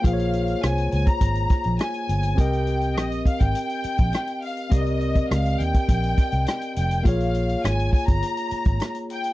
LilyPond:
<<
  \new Staff \with { instrumentName = "Violin section" } { \time 4/4 \key bes \dorian \tempo 4 = 103 f''4 aes''8 aes''16 bes''4~ bes''16 aes''4 | g''4 ees''8 f''16 g''4.~ g''16 f''8 | ees''4 f''8 g''2 g''8 | f''4 aes''8 aes''16 bes''4. r16 g''8 | }
  \new Staff \with { instrumentName = "Tine electric piano" } { \time 4/4 \key bes \dorian <bes f' aes' c'' des''>1 | <c' g' bes' ees''>1 | <c' g' bes' d'' ees''>1 | <bes f' aes' des''>1 | }
  \new Staff \with { instrumentName = "Fingered electric bass" } { \clef bass \time 4/4 \key bes \dorian bes,,4 c,8 des,16 r16 aes,,8 r16 bes,,16 r8 g,,8 | c,4 bes,,8 r16 aes,,16 r8. bes,,16 r4 | c,4 des,8 ees,16 r16 bes,,8 r16 c,16 r8 f,,8 | bes,,4 aes,,8 r16 g,,16 r8. aes,,16 r4 | }
  \new DrumStaff \with { instrumentName = "Drums" } \drummode { \time 4/4 <hh bd>16 hh16 hh16 hh16 <hh ss>16 hh16 hh16 <hh bd>16 <hh bd>16 hh16 <hh bd ss>16 hh16 <hh ss>16 hh16 hh16 hh16 | <hh bd>16 hh16 hh16 hh16 <hh ss>16 hh16 <hh bd>16 <hh bd>16 hh16 hh16 hh16 <hh bd>16 <hh ss>16 hh16 hho16 hh16 | <hh bd>16 hh16 hh16 <hh bd>16 <hh ss>16 hh16 hh16 <hh bd>16 <hh bd>16 hh16 <hh bd ss>16 hh16 <hh ss>16 hh16 hh16 hh16 | <hh bd>16 hh16 hh16 hh16 <hh ss>16 hh16 <hho bd>16 <hh bd>16 hh16 hh16 hh16 <hh bd>16 <hh ss>16 hh16 hh16 hh16 | }
>>